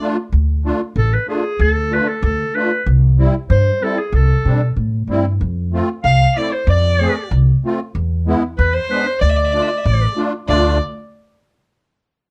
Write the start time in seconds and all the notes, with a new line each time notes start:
0.01 A3 D4 F4
0.32 D2
0.65 A3 D4 F4
0.96 A1 A4
1.14 B4
1.27 A3 D4 F4 G#4
1.59 D2 A4
1.91 A3 D4 F4 B4
2.08 A4
2.23 D2 A4
2.55 A3 D4 F4 B4
2.86 C2
3.18 G3 C4 E4
3.50 G2 C5
3.81 G3 C4 E4 A4
3.99 G#4
4.12 C2 A4
4.45 B2 G3 C4 D4
4.76 A2
5.07 G2 G3 C4 E4
5.41 F2
5.73 A3 C4 F4
6.04 C2 F5
6.35 A3 C4 E4 D5
6.51 C5
6.67 F2 D5
7.00 A3 C4 G#4
7.31 C2
7.64 A3 C4 F4
7.95 E2
8.27 G#3 B3 E4
8.58 E2 B4
8.74 C5
8.90 G#3 B3 D4 B4
9.07 C5
9.21 D2 D5
9.29 E5
9.36 D5
9.45 E5
9.52 A3 D4 F4 D5
9.61 E5
9.69 D5
9.77 E5
9.84 A1 D5
10.16 A3 D4 F4
10.48 D2 A3 D4 F4 D5